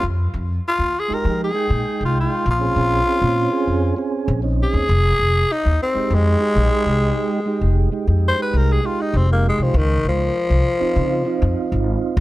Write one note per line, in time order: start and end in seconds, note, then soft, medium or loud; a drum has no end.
0.03 0.26 F2 loud
0.34 0.56 F2 medium
0.68 1.01 F4 loud
0.79 0.90 D#2 medium
1.00 1.16 G#4 medium
1.08 1.52 G#3 medium
1.08 1.52 D#4 medium
1.08 1.52 G4 medium
1.08 muted upright bass stroke soft
1.14 1.41 A#4 medium
1.25 1.47 F3 medium
1.44 2.01 G#4 medium
1.54 2.45 G#3 medium
1.54 2.46 D#4 medium
1.54 2.46 G5 medium
1.70 1.81 A#2 medium
2.01 2.23 C2 medium
2.05 2.17 F4 medium
2.20 2.47 F4 medium
2.46 2.69 A#1 loud
2.51 4.26 F4 loud
2.59 3.03 C4 medium
2.59 3.03 C#4 medium
2.59 3.04 G#4 medium
2.76 2.99 A#1 medium
3.06 3.20 C4 medium
3.06 3.21 C#4 medium
3.06 3.21 G#4 medium
3.21 3.44 A#2 medium
3.21 3.50 C4 medium
3.21 3.50 C#4 medium
3.21 3.51 F4 medium
3.51 3.94 C4 loud
3.51 3.95 C#4 medium
3.51 3.95 G#4 loud
3.67 3.90 F2 medium
3.97 4.40 C4 medium
3.97 4.40 C#4 medium
3.97 4.41 G#4 medium
4.28 4.62 A#1 loud
4.42 4.88 C4 medium
4.42 4.89 C#4 medium
4.42 4.89 D#4 medium
4.63 5.54 G#4 loud
4.73 4.85 D#2 medium
4.89 5.12 F1 loud
5.19 5.42 F1 medium
5.52 5.80 D#4 loud
5.65 5.77 D#2 medium
5.83 6.16 C4 loud
5.94 6.38 G#3 medium
5.94 6.38 D#4 medium
5.94 6.39 G4 medium
5.94 muted upright bass stroke soft
6.10 6.33 F2 medium
6.15 7.91 G#3 loud
6.39 7.40 G#3 medium
6.39 7.40 D#4 medium
6.39 7.41 G4 medium
6.56 6.67 A#1 loud
6.86 7.09 C2 medium
7.46 7.89 G#3 medium
7.46 7.90 D#4 medium
7.46 7.90 G4 loud
7.61 7.84 F1 medium
7.92 8.07 G#3 medium
7.92 8.07 D#4 medium
7.92 8.07 G4 medium
8.07 8.30 F2 medium
8.07 8.36 G#3 medium
8.07 8.37 D#4 medium
8.07 8.37 G4 medium
8.28 8.40 C5 loud
8.38 8.81 G#3 medium
8.38 8.81 D#4 medium
8.38 8.82 G4 loud
8.42 8.58 B4 medium
8.54 8.76 C2 medium
8.54 8.74 A#4 medium
8.73 8.87 G#4 medium
8.83 9.26 G#3 medium
8.83 9.27 D#4 medium
8.83 9.03 F4 medium
8.83 9.27 G4 medium
9.01 9.18 D#4 medium
9.14 9.48 F1 loud
9.14 9.30 C4 medium
9.30 9.75 G#3 medium
9.30 9.45 A#3 loud
9.30 9.75 D#4 medium
9.30 9.76 G4 medium
9.49 9.64 G#3 medium
9.58 9.70 C2 medium
9.62 9.79 F3 medium
9.74 9.97 C#2 loud
9.74 10.06 D#3 loud
10.04 10.27 C#2 medium
10.08 11.85 F3 loud
10.50 10.62 C2 medium
10.80 11.23 C4 loud
10.80 11.23 D#4 medium
10.80 11.24 F4 loud
10.80 muted upright bass stroke soft
10.96 11.19 C#3 loud
11.25 12.17 C4 medium
11.25 12.18 D#4 medium
11.25 12.18 F4 loud
11.42 11.53 F2 loud
11.72 11.95 G#1 loud
12.17 12.20 C2 loud